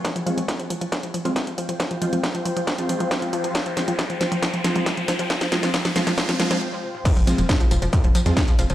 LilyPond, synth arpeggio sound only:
\new Staff \with { instrumentName = "Synth arpeggio sound" } { \clef bass \time 4/4 \key f \minor \tempo 4 = 137 f16 f16 f16 f16 f16 f16 f16 f16 f16 f16 f16 f16 f16 f16 f16 f16 | f16 f16 f16 f16 f16 f16 f16 f16 f16 f16 f16 f16 f16 f16 f16 f16 | f16 f16 f16 f16 f16 f16 f16 f16 f16 f16 f16 f16 f16 f16 f16 f16 | f16 f16 f16 f16 f16 f16 f16 f16 f16 f16 f16 f16 r4 |
f16 f16 f16 f16 f16 f16 f16 f16 f16 f16 f16 f16 f16 f16 f16 f16 | }